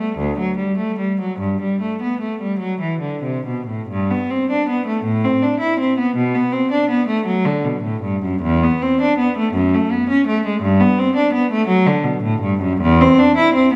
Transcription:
cello
0.00 A3
0.18 D2
0.39 F#3
0.57 G3
0.78 A3
0.99 G3
1.21 F#3
1.39 G2
1.62 G3
1.81 A3
2.02 B3
2.21 A3
2.41 G3
2.59 F#3
2.81 E3
3.01 D3
3.23 C3
3.47 B2
3.68 A2
3.89 G2
4.11 B3
4.30 C4
4.51 D4
4.69 B3
4.86 A3
5.04 A2
5.25 C4
5.42 D4
5.60 E4
5.80 C4
5.99 B3
6.17 B2
6.34 B3
6.52 C4
6.72 D4
6.90 B3
7.08 A3
7.26 F#3
7.45 D3
7.64 B2
7.83 A2
8.03 G2
8.23 F#2
8.42 E2
8.63 B3
8.82 C4
9.01 D4
9.18 B3
9.37 A3
9.54 F#2
9.74 A3
9.92 B3
10.09 C#4
10.27 A3
10.46 G#3
10.62 G2
10.80 B3
10.99 C4
11.16 D4
11.34 B3
11.52 A3
11.68 F#3
11.87 D3
12.04 B2
12.23 A2
12.42 G2
12.61 F#2
12.81 E2
13.01 C4
13.19 D4
13.37 E4
13.54 C4

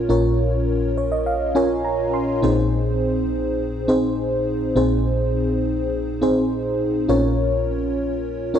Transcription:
fm electric piano
Already playing: C#4 F4 A#4 C#5
0.09 A#1 A#2 C#4 F4 A#4 C#5
0.98 C#5
1.12 D#5
1.26 F5
1.55 C#4 F4 A#4 C#5 G#5
1.84 A#5
2.14 C6
2.42 A#1 A#2 C4 D#4 G#4 C5
3.88 C4 D#4 G#4 C5
4.76 A#1 A#2 C4 D#4 G#4 C5
6.22 C4 D#4 G#4 C5
7.09 A#1 A#2 C#4 F4 A#4 C#5
8.54 C#4 F4 A#4 C#5

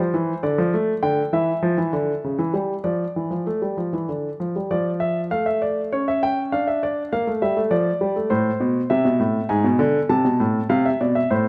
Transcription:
grand piano
Already playing: C5
0.00 F3
0.14 E3
0.43 D3 D5
0.58 F3
0.74 A3
1.03 D3 G5
1.33 E3 E5
1.63 F3
1.78 E3
1.93 D3
2.24 C#3
2.39 E3
2.54 G3
2.84 F3 D5
3.16 E3
3.31 F3
3.47 A3
3.62 G3
3.77 F3
3.93 E3
4.09 D3
4.40 F3
4.56 G3
4.71 F3 D5
5.00 E5
5.31 A3 F5
5.46 E5
5.62 D5
5.93 C#4 C#5
6.08 E5
6.23 G5
6.52 D4 F5
6.67 E5
6.83 D5
7.13 A#3 F5
7.27 A3
7.42 G3 E5
7.57 A3
7.71 F3 D5
8.01 G3
8.16 A3
8.30 A2 C5
8.60 B2
8.90 C3 E5
9.05 B2
9.19 A2
9.49 G#2 G#5
9.64 B2
9.79 D3
10.09 C3 A5
10.25 B2
10.40 A2
10.70 C3 F5
10.85 E5
11.01 B2 D5
11.15 E5
11.30 A2 C5

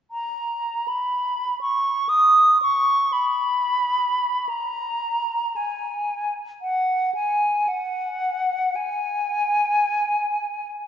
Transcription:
flute
0.11 A#5
0.88 B5
1.61 C#6
2.09 D#6
2.62 C#6
3.13 B5
4.49 A#5
5.56 G#5
6.62 F#5
7.15 G#5
7.68 F#5
8.76 G#5

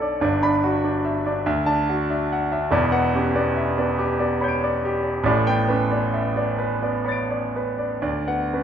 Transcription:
grand piano
Already playing: B1 D4 A4 C#5 D5 E5 D6 A6 C#7
0.02 D5
0.21 G1 G2 D5
0.43 D4 B5
0.64 F#4
0.84 D4 D5
1.05 E5
1.26 D4 D5
1.46 D2 E5
1.66 D4 A5
1.89 F#4
2.10 D4 E5
2.33 F#5
2.52 D4 E5
2.71 E1 E2 D5
2.92 B3 F#5
3.14 C#4 G4
3.36 B3 D5
3.56 E5
3.78 B3 D5
3.98 G4
4.20 B3 D5
4.41 C#5 B5 G6
4.48 D7
4.64 D5
4.85 G4
5.03 D5
5.24 A1 A2 D5
5.47 B3 G5
5.69 C#4 B4
5.91 B3 D5
6.13 E5
6.36 B3 D5
6.58 B4
6.83 B3 D5
7.05 C#5 B5 A6
7.12 D7
7.31 D5
7.56 B4
7.79 D5
8.02 D2 D5
8.27 B3 F#5
8.53 C#4 B4

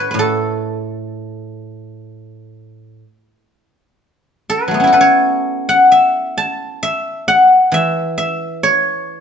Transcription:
guzheng
Already playing: A2 A4 B4 C#5
0.11 A2 B4
0.19 A4
4.50 B4
4.68 F#3 A3
4.74 B3
4.80 C#4 E4
4.87 F#4
4.92 A4 B4
5.01 C#5
5.69 F#5
5.92 E5
6.38 A5
6.83 E5
7.28 F#5
7.72 E3 E5
8.18 E5
8.63 C#5

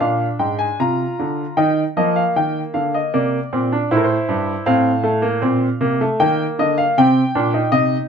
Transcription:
grand piano
0.00 A#2 D4 F5
0.39 G#2 G5
0.59 G#5
0.80 C3 F4 A#5
1.19 D3
1.57 D#3 D#4 G5
1.97 F3 A#3 D#5
2.16 F5
2.36 D#3 G5
2.74 D3 F5
2.94 D#5
3.14 C3 A#3 D5
3.53 A#2 C4
3.72 D4
3.91 A2 E4 C5
3.97 A#4
4.04 C5
4.29 G2
4.66 A2 C4 F5
5.04 A3
5.22 A#3
5.42 A#2 C4
5.81 C3 A#3
6.01 A3
6.20 D#3 A#3 G5
6.59 D3 D#5
6.78 F5
6.98 C3 C4 G5
7.35 A#2 D4
7.54 D#4
7.72 C3 D#5

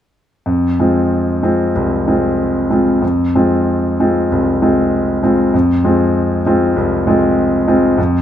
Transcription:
grand piano
0.46 F2
0.80 G#3 C4 F4
1.43 G#3 C4 F4
1.75 C2
2.08 G#3 C4 F4
2.70 G#3 C4 F4
3.02 F2
3.36 G#3 C4 F4
4.00 G#3 C4 F4
4.32 C2
4.62 G#3 C4 F4
5.23 G#3 C4 F4
5.54 F2
5.84 G#3 C4 F4
6.46 G#3 C4 F4
6.76 C2
7.07 G#3 C4 F4
7.68 G#3 C4 F4
7.98 F2

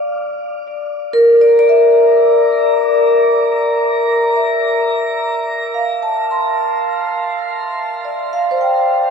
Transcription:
vibraphone
Already playing: D5
1.13 A#4
1.41 D5
1.59 D5
1.69 E5
4.36 E5
5.74 F5
6.02 A5
6.31 C6
8.05 D5
8.33 F5
8.51 C5
8.61 G5

